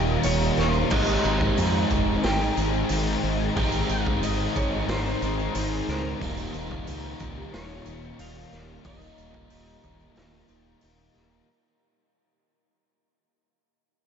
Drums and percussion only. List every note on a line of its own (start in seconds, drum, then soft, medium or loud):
0.07 tambourine soft
0.23 open hi-hat medium
0.23 tambourine loud
0.41 tambourine soft
0.57 snare soft
0.57 tambourine soft
0.73 tambourine soft
0.91 kick loud
0.91 crash loud
1.07 tambourine medium
1.24 tambourine medium
1.41 kick medium
1.41 tambourine soft
1.57 open hi-hat medium
1.57 tambourine medium
1.74 tambourine soft
1.91 kick medium
1.91 tambourine medium
2.24 snare loud
2.24 open hi-hat medium
2.41 tambourine soft
2.57 tambourine medium
2.74 tambourine soft
2.89 open hi-hat medium
2.89 tambourine loud
3.23 tambourine soft
3.57 kick loud
3.57 open hi-hat medium
3.72 tambourine medium
3.89 tambourine medium
4.06 kick loud
4.06 tambourine soft
4.23 open hi-hat medium
4.23 tambourine medium
4.39 tambourine soft
4.56 kick medium
4.56 tambourine medium
4.89 snare loud
4.89 open hi-hat medium
5.06 tambourine soft
5.22 tambourine medium
5.39 tambourine soft
5.55 open hi-hat medium
5.55 tambourine loud
5.88 snare soft
5.88 tambourine soft
6.21 kick loud
6.21 open hi-hat medium
6.37 tambourine medium
6.54 tambourine medium
6.71 kick loud
6.71 tambourine soft
6.87 open hi-hat medium
6.87 tambourine medium
7.20 kick medium
7.20 tambourine medium
7.53 snare loud
7.53 open hi-hat medium
7.69 tambourine soft
7.86 tambourine medium
8.03 tambourine soft
8.19 open hi-hat medium
8.19 tambourine medium
8.52 snare soft
8.52 tambourine soft
8.84 kick loud
8.84 open hi-hat medium
8.84 tambourine soft
9.01 tambourine medium
9.18 tambourine medium
9.34 kick medium
9.34 tambourine soft
9.50 open hi-hat medium
9.50 tambourine medium
9.67 tambourine soft
9.83 kick medium
9.83 tambourine medium
10.00 tambourine soft
10.16 snare loud
10.16 open hi-hat medium
10.16 tambourine soft
10.48 tambourine medium
10.81 open hi-hat medium
10.81 tambourine medium
11.14 snare soft
11.14 tambourine soft
11.31 tambourine soft